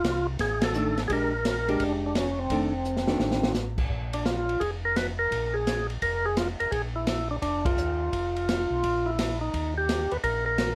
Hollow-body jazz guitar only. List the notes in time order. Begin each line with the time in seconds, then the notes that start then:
0.75 D#3 A3 D4
1.10 G#3 D4 G4
1.68 G#3 D4 G4
2.51 D#3 A3 D4
3.08 D#3 A3 D4